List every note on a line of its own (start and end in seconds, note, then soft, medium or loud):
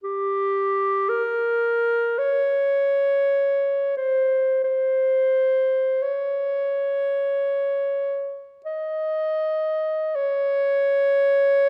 0.04 1.10 G4 medium
1.09 2.20 A#4 medium
2.19 3.96 C#5 medium
3.97 4.63 C5 medium
4.64 6.04 C5 medium
6.02 8.48 C#5 medium
8.65 10.17 D#5 medium
10.15 11.69 C#5 medium